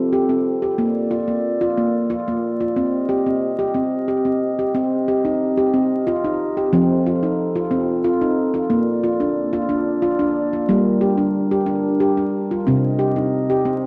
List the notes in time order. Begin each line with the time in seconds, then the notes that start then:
Already playing: C4 F4 A4
0.13 G4
0.29 C4
0.62 G4
0.78 A#3 F4 D5
1.11 F4
1.28 A#3
1.61 F4
1.77 A#3
2.10 F4
2.28 A#3
2.60 F4
2.76 C4 G4 D#5
3.09 G4
3.26 C4
3.59 G4
3.74 C4
4.08 G4
4.25 C4
4.59 G4
4.74 C4 G4 D#5
5.08 G4
5.25 D#4
5.58 G4
5.74 C4
6.07 F4
6.24 D#4
6.57 G4
6.72 F3 C4 F4 A4
7.06 F4
7.23 D#4
7.56 F4
7.71 C4
8.04 F4
8.21 D#4
8.54 F4
8.70 A#3 D5
9.04 F4
9.20 D4
9.53 F4
9.69 D4
10.02 F4
10.19 D4
10.53 F4
10.69 G3 A#3 D4 A#4
11.01 G4
11.18 D4
11.51 G4
11.66 D4
12.00 G4
12.17 D4
12.51 F4
12.67 C3 C4 G4 D#5
12.99 G4
13.16 D#4
13.50 G4
13.65 C4